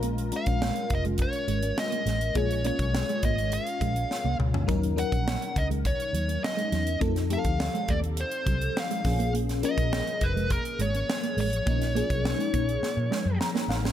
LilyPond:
<<
  \new Staff \with { instrumentName = "Lead electric guitar" } { \time 4/4 \key bes \phrygian \tempo 4 = 103 r8 f''4 ees''8 des''4 ees''4 | des''8 des''4 ees''8 f''4. r8 | r8 ges''4 ees''8 des''4 ees''4 | r8 f''4 d''8 c''4 f''4 |
r8 ees''4 ces''8 bes'8 des''4 des''8~ | des''2. r4 | }
  \new Staff \with { instrumentName = "FM electric piano" } { \time 4/4 \key bes \phrygian <aes des' f' bes'>8 <aes des' f' bes'>2 r4. | <aes des' f' aes'>8 <aes des' f' des''>2 r4. | <ges des' ees' bes'>8 <ges des' ees' bes'>2 r4. | <f c' ees' a'>8 <f c' ees' g' a'>2 r4 <f bes des' aes'>8~ |
<f bes des' aes'>8 <f bes des' bes'>2 r4. | <f bes des' ees'>8 <f bes des' aes'>2 r8 bes''8 f''8 | }
  \new Staff \with { instrumentName = "Clean electric guitar" } { \time 4/4 \key bes \phrygian bes16 r8 des'16 bes16 r8 aes16 r8 aes16 des'16 r16 bes16 aes16 r16 | bes16 r16 bes16 r8 aes16 bes16 r8. aes16 r8 bes16 r16 des'16 | ees'16 r8 des'16 bes16 r8 aes16 r8 ges16 bes16 r16 aes16 ges16 r16 | a16 r16 a16 r8 aes16 a16 r8. ges16 r8 aes16 r16 bes16 |
bes16 r8 des'16 bes16 r8 aes16 r8 aes16 des'16 r16 bes16 aes16 r16 | bes16 r16 bes16 r8 aes16 bes16 r8. aes16 r8 bes16 r16 des'16 | }
  \new Staff \with { instrumentName = "Fingered electric bass" } { \clef bass \time 4/4 \key bes \phrygian bes,,8. bes,,8 r16 f,,8. r16 aes,,8 r8 a,,8 | bes,,8. ces,8 r16 aes,,8. r16 bes,,8 r16 c,16 des,16 d,16 | ees,8. bes,,8 r16 des,8. r16 ees,8 r8 fes,8 | f,8. d,8 r16 ees,8. r16 c,8 r8 bes,,8~ |
bes,,8. bes,,8 r16 f,,8. r16 aes,,8 r8 a,,8 | bes,,8. ces,8 r16 bes,,8 r16 bes,16 r16 ges,16 r8 a,,8 | }
  \new DrumStaff \with { instrumentName = "Drums" } \drummode { \time 4/4 hh16 hh16 hh16 <hh bd>16 sn16 hh16 <hh bd>16 hh16 <hh bd>16 hh16 hh16 hh16 sn16 hh16 <hh sn>16 hh16 | <hh bd>16 hh16 hh16 <hh bd>16 sn16 hh16 <hh bd>16 hh16 hh16 hh16 <hh bd>16 hh16 sn8 toml16 tomfh16 | <hh bd>16 hh16 hh16 <hh bd>16 sn16 hh16 <hh bd>16 hh16 <hh bd>16 hh16 hh16 hh16 sn16 hh16 <hh sn>16 hh16 | <hh bd>16 <hh sn>16 hh16 <hh bd>16 sn16 hh16 <hh bd>16 hh16 hh16 hh16 <hh bd>16 hh16 sn16 hh16 <hho bd sn>16 hh16 |
hh16 <hh sn>16 hh16 <hh bd>16 sn16 hh16 <hh bd>16 hh16 <hh bd>16 hh16 hh16 hh16 sn16 hh16 hho16 hh16 | <hh bd>16 <hh sn>16 hh16 <hh bd>16 sn16 hh16 <hh bd>16 hh16 sn8 sn8 sn16 sn16 sn16 sn16 | }
>>